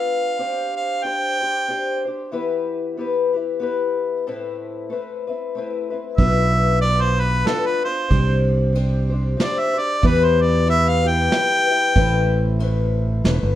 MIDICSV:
0, 0, Header, 1, 5, 480
1, 0, Start_track
1, 0, Key_signature, 0, "minor"
1, 0, Tempo, 643087
1, 294, Time_signature, 3, 2, 24, 8
1, 10116, End_track
2, 0, Start_track
2, 0, Title_t, "Harmonica"
2, 0, Program_c, 0, 22
2, 0, Note_on_c, 0, 77, 73
2, 564, Note_off_c, 0, 77, 0
2, 569, Note_on_c, 0, 77, 71
2, 776, Note_on_c, 0, 79, 86
2, 787, Note_off_c, 0, 77, 0
2, 1532, Note_off_c, 0, 79, 0
2, 4608, Note_on_c, 0, 76, 86
2, 5060, Note_off_c, 0, 76, 0
2, 5086, Note_on_c, 0, 74, 86
2, 5238, Note_on_c, 0, 72, 75
2, 5249, Note_off_c, 0, 74, 0
2, 5377, Note_on_c, 0, 71, 80
2, 5388, Note_off_c, 0, 72, 0
2, 5577, Note_on_c, 0, 69, 76
2, 5588, Note_off_c, 0, 71, 0
2, 5718, Note_on_c, 0, 71, 77
2, 5729, Note_off_c, 0, 69, 0
2, 5853, Note_off_c, 0, 71, 0
2, 5857, Note_on_c, 0, 72, 68
2, 6303, Note_off_c, 0, 72, 0
2, 7032, Note_on_c, 0, 74, 73
2, 7161, Note_on_c, 0, 76, 75
2, 7172, Note_off_c, 0, 74, 0
2, 7305, Note_on_c, 0, 74, 78
2, 7316, Note_off_c, 0, 76, 0
2, 7512, Note_on_c, 0, 71, 79
2, 7523, Note_off_c, 0, 74, 0
2, 7651, Note_on_c, 0, 72, 71
2, 7662, Note_off_c, 0, 71, 0
2, 7777, Note_on_c, 0, 74, 83
2, 7788, Note_off_c, 0, 72, 0
2, 7975, Note_off_c, 0, 74, 0
2, 7986, Note_on_c, 0, 76, 96
2, 8129, Note_on_c, 0, 77, 84
2, 8140, Note_off_c, 0, 76, 0
2, 8268, Note_on_c, 0, 79, 98
2, 8279, Note_off_c, 0, 77, 0
2, 9420, Note_off_c, 0, 79, 0
2, 10116, End_track
3, 0, Start_track
3, 0, Title_t, "Twelve-string acoustic guitar"
3, 0, Program_c, 1, 25
3, 0, Note_on_c, 1, 59, 47
3, 0, Note_on_c, 1, 62, 41
3, 0, Note_on_c, 1, 65, 47
3, 0, Note_on_c, 1, 71, 50
3, 285, Note_off_c, 1, 62, 0
3, 286, Note_off_c, 1, 59, 0
3, 289, Note_on_c, 1, 60, 56
3, 294, Note_on_c, 1, 62, 55
3, 297, Note_off_c, 1, 65, 0
3, 299, Note_off_c, 1, 71, 0
3, 300, Note_on_c, 1, 67, 57
3, 302, Note_on_c, 1, 72, 62
3, 764, Note_off_c, 1, 60, 0
3, 770, Note_off_c, 1, 62, 0
3, 773, Note_on_c, 1, 60, 42
3, 778, Note_off_c, 1, 72, 0
3, 779, Note_on_c, 1, 62, 45
3, 784, Note_off_c, 1, 67, 0
3, 787, Note_on_c, 1, 67, 46
3, 795, Note_on_c, 1, 72, 49
3, 1037, Note_off_c, 1, 72, 0
3, 1046, Note_on_c, 1, 72, 38
3, 1050, Note_off_c, 1, 60, 0
3, 1053, Note_off_c, 1, 62, 0
3, 1054, Note_off_c, 1, 67, 0
3, 1063, Note_on_c, 1, 67, 37
3, 1071, Note_on_c, 1, 62, 31
3, 1251, Note_off_c, 1, 72, 0
3, 1253, Note_on_c, 1, 60, 52
3, 1255, Note_off_c, 1, 62, 0
3, 1259, Note_off_c, 1, 67, 0
3, 1264, Note_on_c, 1, 62, 49
3, 1270, Note_on_c, 1, 67, 55
3, 1278, Note_on_c, 1, 72, 50
3, 1521, Note_off_c, 1, 72, 0
3, 1530, Note_off_c, 1, 60, 0
3, 1530, Note_on_c, 1, 72, 44
3, 1536, Note_off_c, 1, 62, 0
3, 1539, Note_off_c, 1, 67, 0
3, 1547, Note_on_c, 1, 67, 39
3, 1553, Note_on_c, 1, 62, 33
3, 1729, Note_on_c, 1, 52, 60
3, 1731, Note_off_c, 1, 67, 0
3, 1733, Note_off_c, 1, 72, 0
3, 1733, Note_on_c, 1, 59, 60
3, 1736, Note_off_c, 1, 62, 0
3, 1739, Note_on_c, 1, 64, 68
3, 1740, Note_on_c, 1, 67, 63
3, 1743, Note_on_c, 1, 71, 73
3, 2216, Note_off_c, 1, 59, 0
3, 2216, Note_off_c, 1, 67, 0
3, 2219, Note_on_c, 1, 59, 52
3, 2225, Note_off_c, 1, 64, 0
3, 2228, Note_on_c, 1, 64, 50
3, 2231, Note_on_c, 1, 67, 58
3, 2241, Note_off_c, 1, 71, 0
3, 2244, Note_on_c, 1, 71, 56
3, 2475, Note_off_c, 1, 71, 0
3, 2484, Note_on_c, 1, 71, 42
3, 2485, Note_off_c, 1, 67, 0
3, 2493, Note_off_c, 1, 59, 0
3, 2494, Note_on_c, 1, 67, 40
3, 2498, Note_off_c, 1, 64, 0
3, 2509, Note_on_c, 1, 64, 34
3, 2683, Note_on_c, 1, 59, 58
3, 2689, Note_off_c, 1, 64, 0
3, 2690, Note_off_c, 1, 71, 0
3, 2695, Note_off_c, 1, 67, 0
3, 2697, Note_on_c, 1, 64, 61
3, 2703, Note_on_c, 1, 67, 58
3, 2710, Note_on_c, 1, 71, 64
3, 3175, Note_off_c, 1, 64, 0
3, 3178, Note_off_c, 1, 67, 0
3, 3182, Note_off_c, 1, 52, 0
3, 3184, Note_off_c, 1, 59, 0
3, 3185, Note_on_c, 1, 45, 62
3, 3187, Note_on_c, 1, 57, 65
3, 3190, Note_on_c, 1, 60, 68
3, 3194, Note_off_c, 1, 71, 0
3, 3197, Note_on_c, 1, 71, 70
3, 3198, Note_on_c, 1, 64, 78
3, 3647, Note_off_c, 1, 57, 0
3, 3656, Note_on_c, 1, 57, 50
3, 3659, Note_off_c, 1, 45, 0
3, 3659, Note_off_c, 1, 60, 0
3, 3665, Note_off_c, 1, 64, 0
3, 3665, Note_off_c, 1, 71, 0
3, 3668, Note_on_c, 1, 60, 54
3, 3675, Note_on_c, 1, 64, 52
3, 3677, Note_on_c, 1, 71, 51
3, 3926, Note_off_c, 1, 71, 0
3, 3932, Note_off_c, 1, 57, 0
3, 3935, Note_on_c, 1, 71, 40
3, 3937, Note_off_c, 1, 60, 0
3, 3938, Note_off_c, 1, 64, 0
3, 3947, Note_on_c, 1, 64, 41
3, 3957, Note_on_c, 1, 60, 30
3, 4135, Note_off_c, 1, 71, 0
3, 4141, Note_off_c, 1, 64, 0
3, 4142, Note_on_c, 1, 57, 52
3, 4146, Note_off_c, 1, 60, 0
3, 4154, Note_on_c, 1, 60, 57
3, 4166, Note_on_c, 1, 64, 58
3, 4169, Note_on_c, 1, 71, 59
3, 4396, Note_off_c, 1, 71, 0
3, 4405, Note_on_c, 1, 71, 45
3, 4406, Note_off_c, 1, 64, 0
3, 4415, Note_off_c, 1, 57, 0
3, 4415, Note_on_c, 1, 64, 34
3, 4418, Note_off_c, 1, 60, 0
3, 4427, Note_on_c, 1, 60, 34
3, 4610, Note_off_c, 1, 71, 0
3, 4613, Note_on_c, 1, 59, 62
3, 4615, Note_off_c, 1, 64, 0
3, 4617, Note_off_c, 1, 60, 0
3, 4620, Note_on_c, 1, 62, 59
3, 4625, Note_on_c, 1, 65, 68
3, 4627, Note_on_c, 1, 71, 62
3, 5077, Note_off_c, 1, 59, 0
3, 5086, Note_on_c, 1, 59, 47
3, 5092, Note_off_c, 1, 65, 0
3, 5095, Note_off_c, 1, 62, 0
3, 5098, Note_on_c, 1, 62, 43
3, 5100, Note_off_c, 1, 71, 0
3, 5101, Note_on_c, 1, 65, 51
3, 5112, Note_on_c, 1, 71, 47
3, 5550, Note_off_c, 1, 59, 0
3, 5559, Note_on_c, 1, 59, 54
3, 5561, Note_off_c, 1, 62, 0
3, 5570, Note_on_c, 1, 62, 58
3, 5574, Note_off_c, 1, 65, 0
3, 5579, Note_off_c, 1, 71, 0
3, 5583, Note_on_c, 1, 65, 54
3, 5588, Note_on_c, 1, 71, 61
3, 5843, Note_off_c, 1, 59, 0
3, 5843, Note_off_c, 1, 65, 0
3, 5848, Note_off_c, 1, 62, 0
3, 5852, Note_on_c, 1, 65, 37
3, 5857, Note_off_c, 1, 71, 0
3, 5863, Note_on_c, 1, 62, 33
3, 6034, Note_on_c, 1, 60, 61
3, 6035, Note_off_c, 1, 62, 0
3, 6044, Note_on_c, 1, 62, 69
3, 6048, Note_off_c, 1, 65, 0
3, 6051, Note_on_c, 1, 67, 70
3, 6052, Note_on_c, 1, 72, 67
3, 6504, Note_off_c, 1, 60, 0
3, 6513, Note_on_c, 1, 60, 60
3, 6520, Note_off_c, 1, 62, 0
3, 6529, Note_on_c, 1, 62, 59
3, 6532, Note_off_c, 1, 72, 0
3, 6533, Note_off_c, 1, 67, 0
3, 6536, Note_on_c, 1, 67, 57
3, 6542, Note_on_c, 1, 72, 65
3, 6781, Note_off_c, 1, 72, 0
3, 6790, Note_on_c, 1, 72, 52
3, 6798, Note_off_c, 1, 67, 0
3, 6799, Note_off_c, 1, 60, 0
3, 6807, Note_off_c, 1, 62, 0
3, 6807, Note_on_c, 1, 67, 44
3, 6820, Note_on_c, 1, 62, 41
3, 6994, Note_on_c, 1, 60, 55
3, 6995, Note_off_c, 1, 62, 0
3, 7000, Note_off_c, 1, 67, 0
3, 7002, Note_off_c, 1, 72, 0
3, 7004, Note_on_c, 1, 62, 61
3, 7009, Note_on_c, 1, 67, 59
3, 7018, Note_on_c, 1, 72, 62
3, 7258, Note_off_c, 1, 72, 0
3, 7267, Note_on_c, 1, 72, 45
3, 7270, Note_off_c, 1, 67, 0
3, 7279, Note_off_c, 1, 60, 0
3, 7279, Note_on_c, 1, 67, 42
3, 7282, Note_off_c, 1, 62, 0
3, 7291, Note_on_c, 1, 62, 39
3, 7479, Note_on_c, 1, 52, 66
3, 7480, Note_off_c, 1, 72, 0
3, 7486, Note_off_c, 1, 67, 0
3, 7487, Note_off_c, 1, 62, 0
3, 7490, Note_on_c, 1, 64, 68
3, 7492, Note_on_c, 1, 59, 67
3, 7495, Note_on_c, 1, 67, 79
3, 7498, Note_on_c, 1, 71, 80
3, 7953, Note_off_c, 1, 59, 0
3, 7956, Note_on_c, 1, 59, 54
3, 7961, Note_off_c, 1, 64, 0
3, 7962, Note_off_c, 1, 67, 0
3, 7964, Note_on_c, 1, 64, 46
3, 7971, Note_on_c, 1, 67, 55
3, 7977, Note_off_c, 1, 71, 0
3, 7980, Note_on_c, 1, 71, 58
3, 8219, Note_off_c, 1, 71, 0
3, 8228, Note_on_c, 1, 71, 49
3, 8235, Note_off_c, 1, 67, 0
3, 8240, Note_off_c, 1, 59, 0
3, 8244, Note_off_c, 1, 64, 0
3, 8244, Note_on_c, 1, 67, 45
3, 8255, Note_on_c, 1, 64, 35
3, 8431, Note_on_c, 1, 59, 54
3, 8432, Note_off_c, 1, 64, 0
3, 8440, Note_off_c, 1, 71, 0
3, 8441, Note_on_c, 1, 64, 55
3, 8444, Note_off_c, 1, 67, 0
3, 8453, Note_on_c, 1, 67, 56
3, 8454, Note_on_c, 1, 71, 64
3, 8700, Note_off_c, 1, 71, 0
3, 8709, Note_on_c, 1, 71, 41
3, 8718, Note_off_c, 1, 59, 0
3, 8720, Note_off_c, 1, 67, 0
3, 8723, Note_off_c, 1, 64, 0
3, 8729, Note_on_c, 1, 67, 44
3, 8737, Note_on_c, 1, 64, 36
3, 8918, Note_off_c, 1, 52, 0
3, 8921, Note_off_c, 1, 64, 0
3, 8921, Note_off_c, 1, 71, 0
3, 8921, Note_on_c, 1, 45, 68
3, 8924, Note_on_c, 1, 60, 77
3, 8925, Note_on_c, 1, 57, 70
3, 8927, Note_off_c, 1, 67, 0
3, 8930, Note_on_c, 1, 64, 80
3, 8931, Note_on_c, 1, 71, 81
3, 9389, Note_off_c, 1, 57, 0
3, 9398, Note_on_c, 1, 57, 59
3, 9403, Note_off_c, 1, 60, 0
3, 9405, Note_off_c, 1, 45, 0
3, 9410, Note_off_c, 1, 64, 0
3, 9412, Note_on_c, 1, 60, 55
3, 9420, Note_on_c, 1, 64, 62
3, 9421, Note_off_c, 1, 71, 0
3, 9427, Note_on_c, 1, 71, 59
3, 9878, Note_off_c, 1, 57, 0
3, 9882, Note_off_c, 1, 60, 0
3, 9887, Note_on_c, 1, 57, 60
3, 9891, Note_on_c, 1, 60, 64
3, 9895, Note_off_c, 1, 64, 0
3, 9898, Note_off_c, 1, 71, 0
3, 9903, Note_on_c, 1, 64, 67
3, 9911, Note_on_c, 1, 71, 75
3, 10116, Note_off_c, 1, 57, 0
3, 10116, Note_off_c, 1, 60, 0
3, 10116, Note_off_c, 1, 64, 0
3, 10116, Note_off_c, 1, 71, 0
3, 10116, End_track
4, 0, Start_track
4, 0, Title_t, "Fingered electric bass"
4, 0, Program_c, 2, 33
4, 4615, Note_on_c, 2, 35, 86
4, 5543, Note_off_c, 2, 35, 0
4, 6050, Note_on_c, 2, 36, 85
4, 6980, Note_off_c, 2, 36, 0
4, 7490, Note_on_c, 2, 40, 92
4, 8420, Note_off_c, 2, 40, 0
4, 8927, Note_on_c, 2, 33, 89
4, 9858, Note_off_c, 2, 33, 0
4, 9883, Note_on_c, 2, 28, 78
4, 10011, Note_off_c, 2, 28, 0
4, 10022, Note_on_c, 2, 31, 79
4, 10116, Note_off_c, 2, 31, 0
4, 10116, End_track
5, 0, Start_track
5, 0, Title_t, "Drums"
5, 4614, Note_on_c, 9, 51, 42
5, 4616, Note_on_c, 9, 36, 71
5, 4689, Note_off_c, 9, 51, 0
5, 4690, Note_off_c, 9, 36, 0
5, 5098, Note_on_c, 9, 51, 45
5, 5172, Note_off_c, 9, 51, 0
5, 5574, Note_on_c, 9, 38, 65
5, 5574, Note_on_c, 9, 51, 46
5, 5648, Note_off_c, 9, 38, 0
5, 5648, Note_off_c, 9, 51, 0
5, 6052, Note_on_c, 9, 51, 48
5, 6053, Note_on_c, 9, 36, 73
5, 6126, Note_off_c, 9, 51, 0
5, 6127, Note_off_c, 9, 36, 0
5, 6533, Note_on_c, 9, 51, 48
5, 6607, Note_off_c, 9, 51, 0
5, 7015, Note_on_c, 9, 38, 66
5, 7015, Note_on_c, 9, 51, 50
5, 7090, Note_off_c, 9, 38, 0
5, 7090, Note_off_c, 9, 51, 0
5, 7484, Note_on_c, 9, 51, 49
5, 7489, Note_on_c, 9, 36, 79
5, 7559, Note_off_c, 9, 51, 0
5, 7563, Note_off_c, 9, 36, 0
5, 7969, Note_on_c, 9, 51, 43
5, 8043, Note_off_c, 9, 51, 0
5, 8449, Note_on_c, 9, 38, 67
5, 8449, Note_on_c, 9, 51, 48
5, 8524, Note_off_c, 9, 38, 0
5, 8524, Note_off_c, 9, 51, 0
5, 8923, Note_on_c, 9, 51, 42
5, 8926, Note_on_c, 9, 36, 85
5, 8997, Note_off_c, 9, 51, 0
5, 9001, Note_off_c, 9, 36, 0
5, 9405, Note_on_c, 9, 51, 44
5, 9480, Note_off_c, 9, 51, 0
5, 9889, Note_on_c, 9, 38, 69
5, 9889, Note_on_c, 9, 51, 51
5, 9964, Note_off_c, 9, 38, 0
5, 9964, Note_off_c, 9, 51, 0
5, 10116, End_track
0, 0, End_of_file